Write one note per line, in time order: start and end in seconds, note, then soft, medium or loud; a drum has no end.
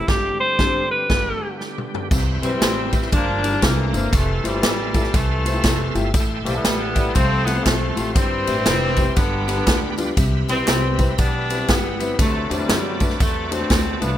0.00 1.07 C4 medium
0.00 0.10 E4 medium
0.08 0.30 G1 medium
0.08 2.09 D3 medium
0.08 2.09 G3 medium
0.08 2.09 G4 medium
0.08 0.40 G4 medium
0.08 kick loud
0.08 snare loud
0.08 crash medium
0.40 0.87 C5 loud
0.59 0.81 G1 medium
0.59 0.80 G3 medium
0.59 0.80 C4 medium
0.59 0.81 D4 medium
0.59 0.81 C5 medium
0.59 kick medium
0.59 snare medium
0.91 1.56 B4 medium
1.10 1.31 G1 medium
1.10 2.10 B3 medium
1.10 kick loud
1.10 snare medium
1.10 crash medium
1.61 snare soft
1.78 mid tom medium
1.94 floor tom medium
2.11 2.38 C2 medium
2.11 2.89 C3 medium
2.11 3.11 E4 medium
2.11 3.11 B4 medium
2.11 3.11 C5 medium
2.11 3.11 G5 medium
2.11 kick loud
2.11 crash loud
2.11 tambourine medium
2.42 2.58 B1 medium
2.42 3.09 E3 medium
2.42 2.49 G3 medium
2.42 3.09 G3 medium
2.42 2.49 C4 medium
2.42 3.09 C4 medium
2.42 2.49 E4 medium
2.42 2.49 B4 medium
2.42 ride bell medium
2.42 tambourine medium
2.51 2.67 G3 medium
2.51 2.67 C4 medium
2.51 2.67 E4 medium
2.51 2.67 B4 medium
2.61 3.04 A1 medium
2.61 snare loud
2.61 clap medium
2.61 ride bell medium
2.61 tambourine loud
2.92 3.05 G3 medium
2.92 3.06 C4 medium
2.92 3.06 E4 medium
2.92 3.06 G4 medium
2.92 kick medium
2.92 ride bell medium
2.92 tambourine medium
3.02 snare soft
3.12 3.55 G1 loud
3.12 3.59 G2 medium
3.12 3.59 F3 medium
3.12 3.59 A#3 medium
3.12 3.63 D4 loud
3.12 3.62 F4 medium
3.12 3.62 A#4 medium
3.12 4.12 D5 medium
3.12 3.62 G5 medium
3.12 kick loud
3.12 ride bell medium
3.12 tambourine medium
3.43 3.50 G3 medium
3.43 3.50 D4 medium
3.43 3.50 F4 medium
3.43 3.50 A#4 medium
3.43 ride bell medium
3.43 tambourine soft
3.53 3.62 G3 medium
3.53 3.62 D4 medium
3.53 3.63 F4 medium
3.53 3.63 G4 medium
3.62 3.89 C2 loud
3.62 4.10 C3 medium
3.62 4.10 D3 medium
3.62 4.10 E3 medium
3.62 4.13 A#3 medium
3.62 4.13 E4 medium
3.62 4.12 C5 medium
3.62 4.13 A#5 medium
3.62 kick medium
3.62 snare loud
3.62 clap medium
3.62 ride bell medium
3.62 tambourine medium
3.93 4.10 G1 medium
3.93 4.06 A#3 medium
3.93 4.06 D4 medium
3.93 4.07 E4 medium
3.93 4.07 C5 medium
3.93 ride bell medium
3.93 tambourine medium
4.12 4.39 F1 loud
4.12 4.44 C3 medium
4.12 4.44 E3 medium
4.12 4.45 A3 loud
4.12 8.12 A4 medium
4.12 6.12 E5 medium
4.12 6.12 F5 medium
4.12 6.12 C6 medium
4.12 kick loud
4.12 ride bell medium
4.12 tambourine medium
4.43 4.60 G1 medium
4.43 5.13 C3 medium
4.43 5.13 E3 medium
4.43 5.15 G3 medium
4.43 4.50 A3 medium
4.43 4.50 E4 medium
4.43 4.50 F4 medium
4.43 4.50 C5 medium
4.43 ride bell medium
4.43 tambourine medium
4.53 4.68 A3 medium
4.53 4.69 E4 medium
4.53 4.69 F4 medium
4.53 4.69 C5 medium
4.63 5.06 A1 medium
4.63 snare loud
4.63 clap medium
4.63 ride bell medium
4.63 tambourine loud
4.94 5.07 A3 medium
4.94 5.07 E4 medium
4.94 5.07 F4 medium
4.94 5.08 A4 medium
4.94 kick medium
4.94 ride bell medium
4.94 tambourine medium
5.04 snare soft
5.14 5.57 C2 medium
5.14 6.11 C3 medium
5.14 6.11 E3 medium
5.14 5.96 A3 medium
5.14 kick loud
5.14 ride bell medium
5.14 tambourine medium
5.45 5.51 A3 medium
5.45 5.51 E4 medium
5.45 5.52 F4 medium
5.45 5.52 C5 medium
5.45 ride bell medium
5.45 tambourine medium
5.53 5.69 A3 medium
5.53 5.69 E4 medium
5.53 5.69 F4 medium
5.53 5.69 G4 medium
5.63 5.91 F1 medium
5.63 kick medium
5.63 snare loud
5.63 clap medium
5.63 ride bell medium
5.63 tambourine medium
5.94 6.11 G1 loud
5.94 6.08 A3 medium
5.94 6.08 E4 medium
5.94 6.08 F4 medium
5.94 6.08 G4 medium
5.94 ride bell medium
5.94 tambourine medium
6.14 6.41 A1 loud
6.14 6.92 A2 medium
6.14 7.14 E5 medium
6.14 7.15 G5 medium
6.14 9.14 C6 medium
6.14 kick loud
6.14 ride bell medium
6.14 tambourine medium
6.44 6.62 B1 medium
6.44 7.12 E3 medium
6.44 7.12 G3 medium
6.44 6.51 A3 medium
6.44 7.11 B3 loud
6.44 6.52 E4 medium
6.44 6.52 G4 medium
6.44 6.52 C5 medium
6.44 ride bell medium
6.44 tambourine medium
6.54 6.69 A3 medium
6.54 6.69 E4 medium
6.54 6.70 G4 medium
6.54 6.70 A4 medium
6.64 7.07 A1 medium
6.64 snare loud
6.64 clap medium
6.64 ride bell medium
6.64 tambourine loud
6.95 7.08 A3 medium
6.95 7.08 E4 medium
6.95 7.09 G4 medium
6.95 7.09 D5 medium
6.95 kick medium
6.95 ride bell medium
6.95 tambourine medium
7.14 7.58 C2 loud
7.14 7.93 C3 medium
7.14 7.65 F3 medium
7.14 7.63 A3 medium
7.14 7.46 C4 loud
7.14 9.15 C5 medium
7.14 8.15 F5 medium
7.14 kick loud
7.14 ride bell medium
7.14 tambourine medium
7.45 7.52 A3 medium
7.45 7.65 B3 loud
7.45 7.53 C4 medium
7.45 7.53 F4 medium
7.45 7.53 C5 medium
7.45 snare soft
7.45 ride bell medium
7.45 tambourine medium
7.55 7.70 A3 medium
7.55 7.71 C4 medium
7.55 7.71 F4 medium
7.55 7.71 C5 medium
7.64 7.92 B1 loud
7.64 8.13 C3 medium
7.64 8.13 F3 medium
7.64 8.15 A3 medium
7.64 kick medium
7.64 snare loud
7.64 clap medium
7.64 ride bell medium
7.64 tambourine medium
7.96 8.13 A1 medium
7.96 8.09 A3 medium
7.96 8.09 C4 medium
7.96 8.09 F4 medium
7.96 8.10 G4 medium
7.96 ride bell medium
7.96 tambourine medium
8.15 8.42 G1 loud
8.15 8.94 G2 medium
8.15 9.13 E3 medium
8.15 9.13 G3 medium
8.15 9.16 C4 loud
8.15 9.15 G4 medium
8.15 9.16 E5 medium
8.15 kick loud
8.15 ride bell medium
8.15 tambourine medium
8.47 8.63 A1 medium
8.47 8.54 G3 medium
8.47 8.54 C4 medium
8.47 8.54 E4 medium
8.47 8.54 C5 medium
8.47 ride bell medium
8.47 tambourine medium
8.56 8.71 G3 medium
8.56 8.72 C4 medium
8.56 8.72 E4 medium
8.56 8.72 C5 medium
8.66 9.09 F1 medium
8.66 snare loud
8.66 clap medium
8.66 ride bell medium
8.66 tambourine medium
8.96 9.10 G3 medium
8.96 9.10 C4 medium
8.96 9.10 E4 medium
8.96 9.11 C5 medium
8.96 kick medium
8.96 ride bell medium
8.96 tambourine medium
9.16 9.60 G1 loud
9.16 9.94 G2 medium
9.16 10.14 D3 medium
9.16 10.14 G3 medium
9.16 9.94 B3 loud
9.16 12.16 G4 medium
9.16 10.16 B4 medium
9.16 10.16 D5 medium
9.16 12.16 B5 medium
9.16 kick loud
9.16 ride bell medium
9.16 tambourine medium
9.48 9.54 G3 medium
9.48 9.54 B3 medium
9.48 9.55 D4 medium
9.48 9.55 B4 medium
9.48 snare soft
9.48 ride bell medium
9.48 tambourine soft
9.57 9.72 G3 medium
9.57 9.72 B3 medium
9.57 9.72 D4 medium
9.57 9.72 B4 medium
9.67 10.10 D2 loud
9.67 kick medium
9.67 snare loud
9.67 clap medium
9.67 ride bell medium
9.67 tambourine medium
9.98 10.11 G3 medium
9.98 10.11 B3 medium
9.98 10.11 D4 medium
9.98 10.11 F4 medium
9.98 ride bell medium
9.98 tambourine medium
10.17 10.44 C2 loud
10.17 10.95 C3 medium
10.17 14.17 B4 medium
10.17 12.17 E5 medium
10.17 kick loud
10.17 ride bell medium
10.17 tambourine medium
10.48 10.65 B1 medium
10.48 11.46 E3 medium
10.48 10.55 G3 medium
10.48 11.17 G3 medium
10.48 10.55 C4 medium
10.48 11.15 C4 loud
10.48 10.55 E4 medium
10.48 10.55 B4 medium
10.48 ride bell medium
10.48 tambourine medium
10.59 10.73 G3 medium
10.59 10.73 C4 medium
10.59 10.74 E4 medium
10.59 10.74 B4 medium
10.68 11.11 C2 medium
10.68 snare loud
10.68 clap medium
10.68 ride bell medium
10.68 tambourine loud
10.99 11.12 G3 medium
10.99 11.12 C4 medium
10.99 11.12 E4 medium
10.99 11.13 B4 medium
10.99 kick medium
10.99 ride bell medium
10.99 tambourine medium
11.18 11.61 B1 medium
11.18 11.68 G3 medium
11.18 11.69 B3 medium
11.18 11.69 D4 loud
11.18 kick loud
11.18 ride bell medium
11.18 tambourine medium
11.50 11.56 G3 medium
11.50 11.56 C4 medium
11.50 11.56 E4 medium
11.50 11.56 B4 medium
11.50 ride bell medium
11.50 tambourine medium
11.58 11.74 G3 medium
11.58 11.74 C4 medium
11.58 11.74 E4 medium
11.58 11.74 B4 medium
11.68 12.12 G1 medium
11.68 12.16 E3 medium
11.68 12.16 G3 medium
11.68 12.20 B3 medium
11.68 kick medium
11.68 snare loud
11.68 clap medium
11.68 ride bell medium
11.68 tambourine medium
11.99 12.12 G3 medium
11.99 12.13 C4 medium
11.99 12.13 E4 medium
11.99 12.13 B4 medium
11.99 ride bell medium
11.99 tambourine medium
12.19 12.46 D2 loud
12.19 12.50 C3 medium
12.19 12.97 D3 medium
12.19 13.16 F#3 medium
12.19 12.48 A3 medium
12.19 14.18 F#4 medium
12.19 14.18 D5 medium
12.19 14.18 A5 medium
12.19 kick loud
12.19 ride bell medium
12.19 tambourine medium
12.50 12.67 E2 medium
12.50 13.19 C3 medium
12.50 13.20 G3 medium
12.50 12.56 A3 medium
12.50 12.57 D4 medium
12.50 12.57 F#4 medium
12.50 12.57 C5 medium
12.50 ride bell medium
12.50 tambourine medium
12.59 12.74 A3 medium
12.59 12.75 D4 medium
12.59 12.75 F#4 medium
12.59 12.75 C5 medium
12.69 13.12 F#2 medium
12.69 snare loud
12.69 clap loud
12.69 ride bell medium
12.69 tambourine loud
13.00 13.14 A3 medium
13.00 13.14 D4 medium
13.00 13.14 F#4 medium
13.00 13.14 B4 medium
13.00 kick medium
13.00 ride bell medium
13.00 tambourine medium
13.10 snare soft
13.20 13.63 E2 medium
13.20 14.17 C3 medium
13.20 13.51 F#3 medium
13.20 13.51 A3 medium
13.20 kick loud
13.20 ride bell medium
13.20 tambourine medium
13.51 14.17 F#3 medium
13.51 13.57 A3 medium
13.51 14.17 A3 medium
13.51 14.02 C4 loud
13.51 13.57 D4 medium
13.51 13.58 F#4 medium
13.51 13.58 C5 medium
13.51 ride bell medium
13.51 tambourine medium
13.60 13.75 A3 medium
13.60 13.76 D4 medium
13.60 13.76 F#4 medium
13.60 13.76 C5 medium
13.70 13.97 D2 loud
13.70 kick medium
13.70 snare loud
13.70 clap medium
13.70 ride bell medium
13.70 tambourine medium
14.01 14.18 C2 medium
14.01 14.18 D3 medium
14.01 14.18 F3 medium
14.01 14.14 A3 medium
14.01 14.18 B3 medium
14.01 14.14 D4 medium
14.01 14.14 F#4 medium
14.01 14.15 B4 medium
14.01 ride bell medium
14.01 tambourine medium